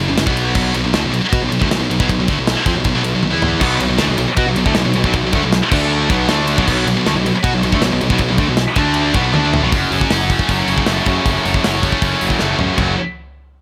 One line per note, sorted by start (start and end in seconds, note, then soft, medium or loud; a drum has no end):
0.08 0.17 F#1 medium
0.08 0.17 F#2 medium
0.08 0.16 C#3 medium
0.18 0.26 F#1 medium
0.18 0.28 F#2 medium
0.18 0.26 C#3 medium
0.18 snare loud
0.18 ride loud
0.26 0.53 B1 loud
0.26 0.54 B2 medium
0.26 0.54 F#3 loud
0.26 0.54 B3 loud
0.26 kick loud
0.37 ride medium
0.55 0.73 B1 loud
0.55 0.73 B2 loud
0.55 0.74 F#3 medium
0.55 0.74 B3 loud
0.55 kick loud
0.55 crash loud
0.74 0.84 B1 loud
0.74 0.83 B2 medium
0.74 0.84 F#3 medium
0.74 ride medium
0.84 0.94 B1 medium
0.84 0.92 B2 medium
0.84 0.93 F#3 medium
0.93 1.03 D2 loud
0.93 1.02 D3 loud
0.93 1.03 A3 loud
0.93 snare loud
0.93 ride loud
1.03 1.13 B1 medium
1.03 1.10 B2 medium
1.03 1.12 F#3 medium
1.12 1.22 B1 medium
1.12 1.20 B2 medium
1.12 1.22 F#3 medium
1.12 ride medium
1.21 muted distorted electric guitar stroke medium
1.21 muted picked electric bass stroke soft
1.29 1.41 B2 loud
1.29 1.40 B3 loud
1.29 1.40 F#4 loud
1.29 kick loud
1.29 ride loud
1.41 1.51 B1 loud
1.41 1.47 B2 medium
1.41 1.48 F#3 medium
1.48 1.60 B1 medium
1.48 1.59 B2 medium
1.48 1.60 F#3 medium
1.48 ride medium
1.59 1.70 D2 medium
1.59 1.69 D3 loud
1.59 1.70 A3 loud
1.59 kick medium
1.69 1.79 B1 medium
1.69 1.78 B2 medium
1.69 1.80 F#3 medium
1.69 snare loud
1.69 ride loud
1.79 1.89 B1 medium
1.79 1.89 B2 medium
1.79 1.89 F#3 medium
1.90 1.99 B1 medium
1.90 1.99 B2 medium
1.90 2.00 F#3 medium
1.90 ride medium
2.00 2.08 B1 medium
2.00 2.08 B2 medium
2.00 2.09 F#3 loud
2.00 kick loud
2.09 2.18 B1 medium
2.09 2.19 B2 medium
2.09 2.19 F#3 medium
2.09 kick loud
2.09 ride loud
2.18 2.27 B1 medium
2.18 2.29 B2 medium
2.18 2.29 F#3 medium
2.28 2.37 D2 loud
2.28 2.37 D3 medium
2.28 2.38 A3 loud
2.28 kick loud
2.28 ride medium
2.37 2.55 B1 medium
2.37 2.53 B2 medium
2.37 2.53 F#3 medium
2.47 snare loud
2.47 ride loud
2.66 2.75 F2 loud
2.66 2.75 F3 medium
2.66 2.76 C4 loud
2.66 kick loud
2.66 ride medium
2.75 2.84 B1 medium
2.75 2.84 B2 medium
2.75 2.85 F#3 medium
2.84 2.94 B1 medium
2.84 2.94 B2 medium
2.84 2.94 F#3 medium
2.84 kick medium
2.84 ride loud
2.95 3.04 B1 loud
2.95 3.02 B2 medium
2.95 3.02 F#3 loud
3.03 3.13 B1 medium
3.03 3.13 B2 medium
3.03 3.13 F#3 medium
3.03 ride medium
3.15 3.23 B1 medium
3.15 3.22 B2 medium
3.15 3.22 F#3 medium
3.23 3.33 B1 medium
3.23 3.30 B2 medium
3.23 3.30 F#3 medium
3.23 high tom medium
3.30 3.60 E2 medium
3.30 3.60 E3 medium
3.30 3.60 B3 loud
3.30 3.61 E4 loud
3.42 floor tom medium
3.61 3.79 B1 loud
3.61 3.79 B2 medium
3.61 3.80 F#3 medium
3.61 3.80 B3 loud
3.61 kick loud
3.61 crash loud
3.79 3.88 B1 medium
3.79 3.87 B2 medium
3.79 3.88 F#3 medium
3.79 ride medium
3.89 3.98 B1 medium
3.89 3.97 B2 medium
3.89 3.98 F#3 medium
3.98 4.08 D2 loud
3.98 4.08 D3 medium
3.98 4.08 A3 loud
3.98 snare loud
3.98 ride loud
4.08 4.17 B1 medium
4.08 4.17 B2 medium
4.08 4.18 F#3 medium
4.18 4.27 B1 medium
4.18 4.27 B2 medium
4.18 4.28 F#3 medium
4.18 ride medium
4.28 muted distorted electric guitar stroke medium
4.28 muted picked electric bass stroke soft
4.37 4.46 B2 loud
4.37 4.46 B3 medium
4.37 4.47 F#4 loud
4.37 kick loud
4.37 ride loud
4.46 4.56 B1 medium
4.46 4.56 B2 medium
4.46 4.56 F#3 medium
4.56 4.65 B1 medium
4.56 4.66 B2 medium
4.56 4.66 F#3 medium
4.56 ride medium
4.66 4.75 D2 medium
4.66 4.75 D3 loud
4.66 4.75 A3 loud
4.66 kick loud
4.75 4.84 B1 medium
4.75 4.84 B2 medium
4.75 4.84 F#3 medium
4.75 snare loud
4.75 ride loud
4.85 4.94 B1 medium
4.85 4.95 B2 medium
4.85 4.95 F#3 medium
4.93 5.04 B1 medium
4.93 5.04 B2 medium
4.93 5.04 F#3 medium
4.93 ride medium
5.04 5.13 B1 medium
5.04 5.14 B2 medium
5.04 5.14 F#3 medium
5.04 kick loud
5.13 5.23 B1 loud
5.13 5.24 B2 medium
5.13 5.24 F#3 medium
5.13 kick loud
5.13 ride loud
5.24 5.33 B1 medium
5.24 5.35 B2 medium
5.24 5.35 F#3 medium
5.33 5.42 D2 loud
5.33 5.43 D3 medium
5.33 5.43 A3 medium
5.33 kick loud
5.33 ride medium
5.44 5.61 B1 medium
5.44 5.58 B2 medium
5.44 5.59 F#3 medium
5.53 snare loud
5.53 ride loud
5.72 6.07 D2 loud
5.72 6.09 D3 medium
5.72 6.09 A3 loud
5.72 6.10 D4 loud
5.72 kick loud
5.72 crash loud
6.10 6.27 B1 loud
6.10 6.28 B2 medium
6.10 6.28 F#3 loud
6.10 6.29 B3 loud
6.10 kick loud
6.10 ride medium
6.28 6.55 D2 loud
6.28 6.56 D3 medium
6.28 6.57 A3 loud
6.28 6.57 D4 loud
6.28 snare loud
6.28 ride loud
6.47 ride medium
6.57 6.66 B1 medium
6.57 6.66 B2 medium
6.57 6.66 F#3 loud
6.57 kick loud
6.68 6.85 B1 loud
6.68 6.85 B2 loud
6.68 6.85 F#3 loud
6.68 6.86 B3 loud
6.68 kick loud
6.68 crash loud
6.86 6.95 B1 loud
6.86 6.95 B2 medium
6.86 6.96 F#3 medium
6.86 ride medium
6.96 7.04 B1 medium
6.96 7.05 B2 medium
6.96 7.06 F#3 medium
7.06 7.14 D2 loud
7.06 7.14 D3 medium
7.06 7.15 A3 loud
7.06 snare loud
7.06 ride loud
7.15 7.23 B1 medium
7.15 7.25 B2 medium
7.15 7.25 F#3 medium
7.25 7.33 B1 medium
7.25 7.34 B2 medium
7.25 7.35 F#3 medium
7.25 ride medium
7.34 muted picked electric bass stroke soft
7.34 muted distorted electric guitar stroke medium
7.43 7.52 B2 loud
7.43 7.52 B3 loud
7.43 7.52 F#4 loud
7.43 kick loud
7.43 ride loud
7.53 7.62 B1 medium
7.53 7.62 B2 medium
7.53 7.62 F#3 medium
7.63 7.71 B1 medium
7.63 7.71 B2 medium
7.63 7.72 F#3 medium
7.63 ride medium
7.72 7.81 D2 medium
7.72 7.80 D3 loud
7.72 7.81 A3 loud
7.72 kick medium
7.81 7.90 B1 medium
7.81 7.90 B2 medium
7.81 7.91 F#3 medium
7.81 snare loud
7.81 ride loud
7.91 8.00 B1 medium
7.91 8.00 B2 medium
7.91 8.00 F#3 medium
8.01 8.10 B1 medium
8.01 8.09 B2 medium
8.01 8.10 F#3 medium
8.01 ride medium
8.10 8.19 B1 loud
8.10 8.18 B2 loud
8.10 8.18 F#3 loud
8.10 kick loud
8.18 8.28 B1 medium
8.18 8.27 B2 medium
8.18 8.28 F#3 medium
8.18 kick loud
8.18 ride loud
8.29 8.39 B1 medium
8.29 8.38 B2 medium
8.29 8.38 F#3 medium
8.38 8.47 D2 loud
8.38 8.47 D3 loud
8.38 8.48 A3 loud
8.38 kick loud
8.38 ride medium
8.48 8.65 B1 medium
8.48 8.63 B2 medium
8.48 8.64 F#3 medium
8.57 snare loud
8.57 ride loud
8.76 9.12 D2 loud
8.76 9.14 D3 medium
8.76 9.14 A3 loud
8.76 9.15 D4 loud
8.76 kick loud
8.76 ride medium
8.94 ride loud
9.14 9.32 B1 loud
9.14 9.33 B2 loud
9.14 9.33 F#3 medium
9.14 9.34 B3 medium
9.14 kick loud
9.14 ride medium
9.33 9.60 D2 medium
9.33 9.61 D3 medium
9.33 9.62 A3 loud
9.33 9.62 D4 loud
9.33 high tom medium
9.54 floor tom loud
9.62 9.71 B1 loud
9.62 9.72 B2 medium
9.62 9.72 F#3 medium
9.72 9.84 F#1 medium
9.72 11.25 F#2 medium
9.72 kick loud
9.72 open hi-hat medium
9.91 10.03 F#1 medium
9.91 10.49 F#3 medium
9.91 open hi-hat medium
10.01 kick medium
10.11 10.34 F#1 medium
10.11 10.51 F#3 medium
10.11 11.63 C#4 medium
10.11 snare loud
10.11 open hi-hat medium
10.30 11.85 A3 medium
10.30 11.07 C#4 medium
10.30 kick medium
10.30 open hi-hat medium
10.39 kick medium
10.49 10.61 F#1 medium
10.49 10.86 F#3 medium
10.49 kick medium
10.49 open hi-hat medium
10.68 10.80 F#1 medium
10.68 11.04 C#3 medium
10.68 open hi-hat medium
10.78 kick medium
10.86 10.99 F#1 medium
10.86 11.44 F#3 medium
10.86 11.82 A3 medium
10.86 snare loud
10.86 open hi-hat medium
11.06 11.18 F#2 medium
11.06 12.01 C#3 medium
11.06 11.82 C#4 medium
11.06 kick medium
11.06 open hi-hat soft
11.26 11.37 F#1 loud
11.26 12.21 F#2 medium
11.26 kick loud
11.26 open hi-hat medium
11.45 11.57 F#1 loud
11.45 12.01 F#3 medium
11.45 open hi-hat medium
11.54 kick medium
11.62 11.89 F#1 medium
11.62 12.02 F#3 medium
11.62 12.59 C#4 medium
11.62 snare loud
11.62 open hi-hat medium
11.83 12.79 A3 medium
11.83 12.59 C#4 medium
11.83 kick medium
11.83 open hi-hat medium
11.92 kick medium
12.02 12.14 F#1 medium
12.02 12.39 F#3 medium
12.02 kick loud
12.02 open hi-hat medium
12.20 12.34 F#1 medium
12.20 12.58 C#3 medium
12.20 open hi-hat medium
12.30 kick medium
12.39 12.53 F#1 medium
12.39 12.78 F#3 medium
12.39 12.78 A3 medium
12.39 snare medium
12.59 12.72 F#2 medium
12.59 12.78 C#3 medium
12.59 12.79 C#4 medium
12.59 floor tom medium
12.78 12.96 F#1 medium
12.78 12.93 F#2 medium
12.78 12.94 C#3 medium
12.78 12.94 F#3 loud
12.78 kick loud
12.78 floor tom loud
12.78 crash medium